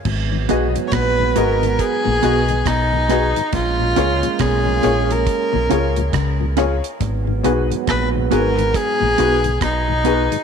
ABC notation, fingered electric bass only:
X:1
M:4/4
L:1/16
Q:"Swing 16ths" 1/4=69
K:G#dor
V:1 name="Fingered electric bass" clef=bass
G,,,2 B,,, z A,,,2 G,,,2 z A,,, B,,,2 B,,,3 z | A,,,2 C,, z B,,,2 A,,,2 z B,,, C,,2 C,,3 z | G,,,2 B,,, z A,,,2 G,,,2 z A,,, B,,,2 B,,,3 z |]